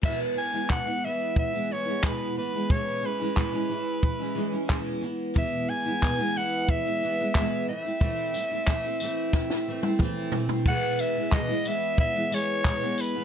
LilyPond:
<<
  \new Staff \with { instrumentName = "Soprano saxophone" } { \time 4/4 \key e \major \tempo 4 = 90 e''8 gis''8 fis''8 e''8 e''8 cis''8 b'8 b'8 | cis''8 b'8 b'2 r4 | e''8 gis''4 fis''8 e''4. e''8~ | e''2. r4 |
fis''8 e''8 dis''8 e''8 e''8 cis''4 b'8 | }
  \new Staff \with { instrumentName = "Steel-string acoustic guitar" } { \time 4/4 \key e \major <e, b, e gis b e'>8 <e gis b e'>16 <e gis b e'>16 <e, b, e gis b e'>16 <e gis b e'>16 <e gis b e'>8. <e gis b e'>16 <e gis b e'>16 <e gis b e'>16 <e, b, e gis b e'>8 <e gis b e'>16 <e gis b e'>16 | <e, b, e gis cis' e'>8 <e gis cis' e'>16 <e gis cis' e'>16 <e, b, e gis cis' e'>16 <e gis cis' e'>16 <e gis cis' e'>8. <e gis cis' e'>16 <e gis cis' e'>16 <e gis cis' e'>16 <e, b, e gis cis' e'>8 <e gis b e'>8 | <e, b, e gis b e'>8 <e gis b e'>16 <e gis b e'>16 <e, b, e gis b e'>16 <e gis b e'>16 <e gis b e'>8. <e gis b e'>16 <e gis b e'>16 <e gis b e'>16 <e, b, e gis b e'>8 <e a c' e'>16 <a c' e'>16 | <e a c' e'>8 <e a c' e'>16 <a c' e'>16 <e a c' e'>16 <a c' e'>16 <e a c' e'>8. <a c' e'>16 <e a c' e'>16 <a c' e'>16 <e a c' e'>8 <e a c' e'>16 <a c' e'>16 |
<e, b, e gis b e'>8. <e gis b e'>16 <e, b, e gis b e'>16 <e gis b e'>16 <e gis b e'>8. <e gis b e'>16 <e gis b e'>8 <e, b, e gis b e'>16 <e gis b e'>8 <e gis b e'>16 | }
  \new DrumStaff \with { instrumentName = "Drums" } \drummode { \time 4/4 <cymc bd>4 <hc bd>4 bd4 <hc bd>4 | bd4 <hc bd>4 bd4 <hc bd>4 | bd4 <hc bd>4 bd4 <hc bd>4 | bd8 tamb8 <hc bd>8 tamb8 <bd sn>16 sn8 tommh16 <bd toml>8 tomfh16 tomfh16 |
<cymc bd>8 tamb8 <hc bd>8 tamb8 bd8 tamb8 <hc bd>8 tamb8 | }
>>